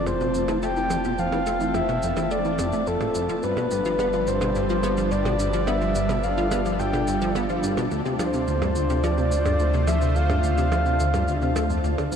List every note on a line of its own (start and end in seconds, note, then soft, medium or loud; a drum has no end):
0.00 3.40 F1 medium
0.00 3.39 A3 medium
0.00 3.39 C4 medium
0.00 3.39 F4 medium
0.00 12.16 F4 medium
0.00 3.39 C5 medium
0.00 3.39 A5 medium
0.00 12.16 A5 medium
0.07 0.12 F2 loud
0.07 0.59 C5 loud
0.07 percussion blips soft
0.07 shaker medium
0.21 0.30 B2 loud
0.21 shaker soft
0.34 0.44 F2 medium
0.34 shaker medium
0.48 0.58 E3 loud
0.48 percussion blips soft
0.48 shaker medium
0.62 0.72 A3 loud
0.62 1.21 G5 loud
0.62 shaker medium
0.76 0.90 E3 medium
0.76 shaker soft
0.90 0.96 F2 loud
0.90 percussion blips soft
0.90 shaker medium
1.04 1.14 B2 loud
1.04 shaker medium
1.18 1.28 F2 medium
1.18 1.77 F5 loud
1.18 shaker medium
1.32 1.42 E3 loud
1.32 percussion blips soft
1.32 shaker soft
1.46 1.56 A3 loud
1.46 shaker medium
1.60 1.74 E3 medium
1.60 shaker medium
1.74 1.80 F2 loud
1.74 2.33 E5 loud
1.74 percussion blips soft
1.74 shaker medium
1.89 1.98 B2 loud
1.89 shaker soft
2.02 2.12 F2 medium
2.02 shaker medium
2.17 2.26 E3 loud
2.17 percussion blips soft
2.17 shaker medium
2.31 2.40 A3 loud
2.31 2.89 D5 loud
2.31 shaker medium
2.45 2.58 E3 medium
2.45 shaker soft
2.59 2.72 F2 loud
2.59 percussion blips soft
2.59 shaker loud
2.73 2.82 A3 medium
2.73 shaker medium
2.87 2.96 F2 medium
2.87 3.43 A4 loud
2.87 shaker medium
3.01 3.07 A2 medium
3.01 percussion blips soft
3.01 shaker soft
3.15 3.28 F2 medium
3.15 shaker loud
3.29 3.35 F3 medium
3.29 shaker medium
3.43 7.89 G1 medium
3.43 3.57 G2 medium
3.43 7.88 G3 medium
3.43 12.16 D4 medium
3.43 5.65 G4 medium
3.43 4.29 B4 loud
3.43 12.16 D5 medium
3.43 shaker medium
3.57 3.67 B2 medium
3.57 percussion blips soft
3.57 shaker soft
3.71 3.81 G2 medium
3.71 shaker medium
3.85 3.95 F3 loud
3.85 shaker medium
3.99 4.09 B3 loud
3.99 percussion blips soft
3.99 shaker medium
4.13 4.27 F3 medium
4.13 shaker soft
4.27 4.41 G2 medium
4.27 5.13 C5 loud
4.27 shaker medium
4.41 4.51 B2 loud
4.41 percussion blips soft
4.41 shaker medium
4.55 4.65 G2 medium
4.55 shaker medium
4.69 4.79 F3 loud
4.69 shaker soft
4.83 4.93 B3 loud
4.83 percussion blips soft
4.83 shaker medium
4.97 5.11 F3 medium
4.97 shaker medium
5.11 5.25 G2 medium
5.11 5.69 D5 loud
5.11 shaker medium
5.25 5.35 B2 loud
5.25 percussion blips soft
5.25 shaker soft
5.39 5.49 G2 medium
5.39 shaker medium
5.53 5.63 F3 loud
5.53 shaker medium
5.67 5.77 B3 loud
5.67 7.90 A4 medium
5.67 6.25 E5 loud
5.67 percussion blips soft
5.67 shaker soft
5.81 5.95 F3 medium
5.81 shaker soft
5.95 6.09 G2 medium
5.95 shaker medium
6.09 6.19 B2 loud
6.09 percussion blips soft
6.09 shaker soft
6.23 6.33 G2 medium
6.23 6.79 F5 loud
6.23 shaker medium
6.37 6.47 F3 loud
6.37 shaker soft
6.51 6.61 B3 loud
6.51 percussion blips soft
6.51 shaker medium
6.65 6.79 F3 medium
6.65 shaker soft
6.79 6.93 G2 medium
6.79 7.32 G5 medium
6.79 shaker medium
6.93 7.03 B2 loud
6.93 percussion blips soft
6.93 shaker soft
7.07 7.17 G2 medium
7.07 shaker medium
7.21 7.31 F3 loud
7.21 shaker soft
7.35 7.45 B3 loud
7.35 percussion blips soft
7.35 shaker soft
7.49 7.63 F3 medium
7.49 shaker soft
7.63 7.77 G2 medium
7.63 shaker medium
7.77 7.87 B2 loud
7.77 percussion blips soft
7.77 shaker soft
7.91 8.01 D2 medium
7.91 12.16 D2 medium
7.91 12.16 A3 medium
7.91 12.16 F4 medium
7.91 12.16 C5 medium
7.91 shaker soft
8.05 8.15 C3 loud
8.05 shaker soft
8.19 8.29 F3 loud
8.19 9.05 C5 medium
8.19 percussion blips soft
8.19 shaker medium
8.33 8.47 C3 medium
8.33 shaker medium
8.47 8.61 D2 medium
8.47 shaker soft
8.62 8.71 G2 loud
8.62 percussion blips soft
8.62 shaker soft
8.75 8.85 D2 medium
8.75 shaker medium
8.90 8.99 C3 loud
8.90 shaker soft
9.04 9.13 F3 loud
9.04 9.89 D5 loud
9.04 percussion blips soft
9.04 shaker medium
9.18 9.31 C3 medium
9.18 shaker soft
9.32 9.45 D2 medium
9.32 shaker medium
9.46 9.55 G2 loud
9.46 percussion blips soft
9.46 shaker soft
9.59 9.69 D2 medium
9.59 shaker medium
9.73 9.83 C3 loud
9.73 shaker soft
9.87 9.97 F3 loud
9.87 10.17 E5 loud
9.87 percussion blips soft
9.87 shaker medium
10.01 10.15 C3 medium
10.01 shaker soft
10.15 10.29 D2 medium
10.15 11.84 F5 loud
10.15 shaker medium
10.30 10.39 G2 loud
10.30 percussion blips soft
10.30 shaker soft
10.44 10.53 D2 medium
10.44 shaker medium
10.58 10.67 C3 loud
10.58 shaker medium
10.72 10.81 F3 loud
10.72 percussion blips soft
10.72 shaker medium
10.86 10.99 C3 medium
10.86 shaker soft
11.00 11.13 D2 medium
11.00 shaker medium
11.14 11.23 G2 loud
11.14 percussion blips soft
11.14 shaker medium
11.28 11.37 D2 medium
11.28 shaker medium
11.42 11.51 C3 medium
11.42 shaker soft
11.56 11.69 A3 loud
11.56 percussion blips soft
11.56 shaker medium
11.70 11.79 F2 medium
11.70 shaker medium
11.84 11.93 D2 loud
11.84 shaker medium
11.98 12.07 D3 medium
11.98 percussion blips soft
11.98 shaker soft
12.12 12.16 F2 medium
12.12 shaker medium